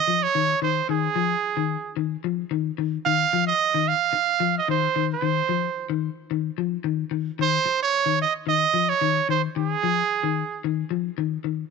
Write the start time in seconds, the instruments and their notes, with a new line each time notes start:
Already playing: trumpet D#5
0.08 clean electric guitar F3
0.23 trumpet C#5
0.35 clean electric guitar D#3
0.62 clean electric guitar D#3, trumpet C5
0.89 clean electric guitar D#3, trumpet G#4
1.16 clean electric guitar F3
1.57 clean electric guitar D#3
1.97 clean electric guitar D#3
2.24 clean electric guitar F3
2.51 clean electric guitar D#3
2.78 clean electric guitar D#3
3.05 clean electric guitar D#3, trumpet F5
3.33 clean electric guitar F3
3.47 trumpet D#5
3.74 clean electric guitar D#3
3.88 trumpet F5
4.13 muted clean electric guitar stroke
4.40 clean electric guitar F3
4.58 trumpet D#5
4.68 clean electric guitar D#3, trumpet C5
4.96 clean electric guitar D#3
5.14 trumpet C5
5.22 clean electric guitar D#3
5.49 clean electric guitar F3
5.90 clean electric guitar D#3
6.31 clean electric guitar D#3
6.58 clean electric guitar F3
6.84 clean electric guitar D#3
7.11 clean electric guitar D#3
7.39 clean electric guitar D#3, trumpet C5
7.66 muted clean electric guitar stroke
7.83 trumpet C#5
8.06 clean electric guitar D#3
8.22 trumpet D#5
8.47 clean electric guitar D#3, trumpet D#5
8.74 clean electric guitar F3
8.89 trumpet C#5
9.01 clean electric guitar D#3
9.29 clean electric guitar D#3, trumpet C5
9.56 clean electric guitar D#3, trumpet G#4
9.83 clean electric guitar F3
10.23 clean electric guitar D#3
10.64 clean electric guitar D#3
10.91 clean electric guitar F3
11.18 clean electric guitar D#3
11.44 clean electric guitar D#3